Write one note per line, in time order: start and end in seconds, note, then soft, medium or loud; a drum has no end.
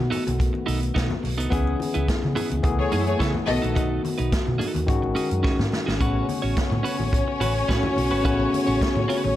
0.00 1.19 D#3 medium
0.00 1.49 D#3 medium
0.00 1.20 A3 medium
0.00 1.48 A3 medium
0.00 1.20 B3 medium
0.00 4.84 B3 medium
0.00 1.20 F#4 medium
0.00 1.49 F#4 medium
0.10 0.29 B3 medium
0.10 0.25 D#4 medium
0.10 0.24 A4 loud
0.10 open hi-hat medium
0.10 low conga medium
0.25 0.48 B1 medium
0.25 muted clean electric guitar stroke soft
0.25 closed hi-hat medium
0.25 high conga medium
0.39 muted clean electric guitar stroke soft
0.39 kick loud
0.39 closed hi-hat medium
0.39 muted conga soft
0.53 muted clean electric guitar stroke soft
0.53 muted conga soft
0.66 0.89 B1 medium
0.66 0.84 B3 medium
0.66 0.81 D#4 medium
0.66 0.80 A4 medium
0.66 open hi-hat medium
0.81 muted clean electric guitar stroke soft
0.81 closed hi-hat medium
0.94 1.07 B2 loud
0.94 1.13 B3 medium
0.94 1.09 D#4 medium
0.94 1.08 A4 medium
0.94 kick loud
0.94 snare loud
0.94 closed hi-hat medium
1.09 muted clean electric guitar stroke soft
1.09 muted conga soft
1.09 high conga medium
1.09 low conga medium
1.22 1.39 B1 medium
1.22 muted clean electric guitar stroke soft
1.22 open hi-hat medium
1.22 low conga medium
1.38 1.49 C2 medium
1.38 1.49 B3 soft
1.38 1.51 D#4 medium
1.38 1.51 A4 medium
1.38 closed hi-hat soft
1.50 1.73 C#2 loud
1.50 2.63 C#3 medium
1.50 2.61 E3 medium
1.50 2.63 G#3 medium
1.50 1.77 B3 medium
1.50 2.61 B3 medium
1.50 2.61 C#4 medium
1.50 1.77 E4 medium
1.50 2.63 E4 medium
1.50 1.78 G#4 medium
1.50 2.62 G#4 medium
1.50 kick loud
1.50 closed hi-hat medium
1.50 muted conga soft
1.67 muted conga soft
1.79 muted clean electric guitar stroke soft
1.79 open hi-hat medium
1.79 high conga medium
1.94 2.05 C#2 loud
1.94 2.07 B3 medium
1.94 2.07 E4 medium
1.94 2.07 B4 medium
1.94 closed hi-hat medium
2.08 kick loud
2.08 snare loud
2.08 closed hi-hat medium
2.08 muted conga soft
2.22 2.34 C#3 medium
2.22 muted clean electric guitar stroke soft
2.22 high conga medium
2.35 2.53 B3 medium
2.35 2.50 E4 loud
2.35 2.49 G#4 loud
2.35 open hi-hat medium
2.35 low conga medium
2.50 2.61 C#2 medium
2.50 muted clean electric guitar stroke soft
2.50 closed hi-hat medium
2.50 high conga medium
2.63 2.85 C#2 loud
2.63 3.48 E3 medium
2.63 3.47 E3 medium
2.63 3.45 A3 medium
2.63 4.86 A3 medium
2.63 3.46 B3 medium
2.63 3.47 G#4 medium
2.63 3.48 G#4 medium
2.63 muted clean electric guitar stroke soft
2.63 kick loud
2.63 closed hi-hat medium
2.63 muted conga soft
2.79 2.90 A3 medium
2.79 2.90 G#4 medium
2.79 2.90 C#5 medium
2.79 muted clean electric guitar stroke soft
2.92 3.14 F#2 medium
2.92 3.12 B3 medium
2.92 3.06 E4 medium
2.92 3.05 A4 loud
2.92 open hi-hat medium
3.06 3.18 A3 medium
3.06 3.18 G#4 medium
3.06 3.18 C#5 medium
3.06 muted clean electric guitar stroke soft
3.06 closed hi-hat medium
3.19 3.32 C#3 loud
3.19 3.37 B3 medium
3.19 3.33 E4 medium
3.19 3.32 A4 loud
3.19 kick loud
3.19 snare loud
3.19 closed hi-hat medium
3.34 muted clean electric guitar stroke soft
3.34 muted conga soft
3.34 high conga medium
3.34 low conga medium
3.45 3.59 B1 medium
3.45 4.84 D#3 medium
3.45 5.83 D#3 medium
3.45 4.85 A3 medium
3.45 4.85 B3 medium
3.45 3.72 B3 medium
3.45 4.85 F#4 medium
3.45 5.83 F#4 medium
3.45 3.72 A4 loud
3.45 3.72 D#5 loud
3.45 muted clean electric guitar stroke soft
3.45 open hi-hat medium
3.45 low conga medium
3.62 3.77 A#1 medium
3.62 3.74 B3 soft
3.62 3.74 D#4 soft
3.62 3.75 A4 medium
3.62 closed hi-hat soft
3.75 3.98 B1 loud
3.75 4.01 B3 medium
3.75 4.02 D#4 medium
3.75 4.02 A4 medium
3.75 kick loud
3.75 closed hi-hat medium
3.75 muted conga soft
4.04 muted clean electric guitar stroke soft
4.04 open hi-hat soft
4.04 high conga medium
4.18 4.29 B1 loud
4.18 4.31 B3 medium
4.18 4.31 D#4 medium
4.18 4.31 B4 medium
4.18 closed hi-hat medium
4.32 kick loud
4.32 snare loud
4.32 closed hi-hat medium
4.32 muted conga soft
4.45 4.57 B2 medium
4.45 muted clean electric guitar stroke medium
4.45 high conga medium
4.58 4.80 B3 medium
4.58 4.73 D#4 medium
4.58 4.72 A4 medium
4.58 open hi-hat medium
4.58 low conga medium
4.74 4.86 D#2 medium
4.74 muted clean electric guitar stroke soft
4.74 closed hi-hat soft
4.74 high conga medium
4.86 5.00 G#2 medium
4.86 5.97 D#3 medium
4.86 5.97 G#3 medium
4.86 5.83 G#3 medium
4.86 5.98 C#4 medium
4.86 5.83 C#4 medium
4.86 5.98 F#4 medium
4.86 muted clean electric guitar stroke soft
4.86 kick loud
4.86 closed hi-hat medium
4.86 muted conga soft
5.02 5.13 G#1 medium
5.02 muted clean electric guitar stroke soft
5.02 muted conga soft
5.15 5.33 C#4 medium
5.15 5.30 F#4 medium
5.15 5.29 G#4 medium
5.15 open hi-hat medium
5.15 high conga medium
5.30 5.41 F#2 medium
5.30 muted clean electric guitar stroke soft
5.30 closed hi-hat soft
5.43 5.61 C#4 medium
5.43 5.58 F#4 medium
5.43 5.57 G#4 medium
5.43 kick loud
5.43 snare medium
5.43 muted conga soft
5.59 5.69 G#2 medium
5.59 muted clean electric guitar stroke soft
5.59 snare medium
5.59 high conga medium
5.59 low conga medium
5.71 muted clean electric guitar stroke soft
5.71 snare medium
5.71 low conga medium
5.86 5.98 G#1 medium
5.86 5.99 C#4 soft
5.86 5.99 F#4 medium
5.86 5.99 G#4 medium
5.86 snare medium
5.98 6.22 A1 medium
5.98 8.20 C#3 medium
5.98 9.36 C#3 medium
5.98 8.20 A3 medium
5.98 9.36 A3 medium
5.98 9.36 B3 medium
5.98 8.21 B3 medium
5.98 6.26 C#4 medium
5.98 9.36 C#4 medium
5.98 9.36 F#4 medium
5.98 6.26 F#4 medium
5.98 8.22 F#4 medium
5.98 6.27 B4 medium
5.98 9.36 C#5 medium
5.98 kick loud
5.98 closed hi-hat medium
5.98 muted conga soft
6.29 open hi-hat medium
6.29 high conga medium
6.42 6.54 A1 medium
6.42 6.56 C#4 medium
6.42 6.56 F#4 medium
6.42 6.55 C#5 medium
6.57 kick loud
6.57 snare loud
6.57 closed hi-hat medium
6.57 muted conga soft
6.70 6.81 A2 medium
6.70 muted clean electric guitar stroke soft
6.70 high conga medium
6.83 7.02 C#4 medium
6.83 6.98 F#4 medium
6.83 6.97 B4 medium
6.83 open hi-hat medium
6.99 7.21 A1 medium
6.99 muted clean electric guitar stroke soft
6.99 high conga medium
7.12 muted clean electric guitar stroke soft
7.12 kick loud
7.12 closed hi-hat medium
7.28 muted clean electric guitar stroke soft
7.40 7.62 A1 medium
7.40 7.58 C#4 medium
7.40 7.55 F#4 medium
7.40 7.54 B4 medium
7.40 open hi-hat medium
7.40 high conga medium
7.68 7.80 A2 medium
7.68 7.86 C#4 medium
7.68 7.83 F#4 medium
7.68 7.82 B4 medium
7.68 kick loud
7.68 snare loud
7.68 closed hi-hat medium
7.68 muted conga soft
7.83 muted clean electric guitar stroke soft
7.83 muted conga soft
7.83 high conga medium
7.83 low conga medium
7.96 8.09 B1 medium
7.96 muted clean electric guitar stroke soft
7.96 open hi-hat medium
7.96 low conga medium
8.11 8.22 G#1 medium
8.11 8.23 C#4 medium
8.11 8.24 F#4 medium
8.11 8.24 B4 medium
8.22 8.46 A1 loud
8.22 9.36 C#3 medium
8.22 9.36 A3 medium
8.22 9.36 B3 medium
8.22 8.51 C#4 medium
8.22 9.36 C#4 medium
8.22 8.51 F#4 medium
8.22 8.51 B4 loud
8.22 kick loud
8.22 closed hi-hat medium
8.40 muted conga soft
8.53 open hi-hat medium
8.53 high conga medium
8.67 8.78 A1 loud
8.67 8.80 C#4 soft
8.67 8.80 F#4 medium
8.67 8.80 C#5 medium
8.81 kick loud
8.81 snare loud
8.81 closed hi-hat medium
8.81 muted conga soft
8.95 9.06 A2 medium
8.95 muted clean electric guitar stroke soft
8.95 muted conga soft
8.95 high conga medium
9.08 9.29 C#4 medium
9.08 9.23 F#4 medium
9.08 9.22 B4 medium
9.08 open hi-hat medium
9.24 9.36 A1 medium
9.24 muted clean electric guitar stroke soft
9.24 high conga medium